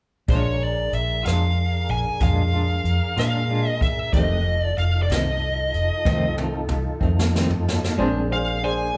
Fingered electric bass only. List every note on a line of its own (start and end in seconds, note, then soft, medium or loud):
0.28 0.89 A#1 medium
0.93 1.23 A#1 medium
1.26 1.86 F2 medium
1.89 2.04 A#1 medium
2.20 2.81 F2 medium
2.84 3.00 F2 medium
3.17 4.10 A#2 medium
4.13 4.73 F1 medium
4.77 5.07 F1 medium
5.10 5.70 C2 medium
5.74 5.89 F1 medium
6.05 6.66 C2 medium
6.70 6.85 C2 medium
7.01 7.94 F2 medium
7.98 8.91 A#1 medium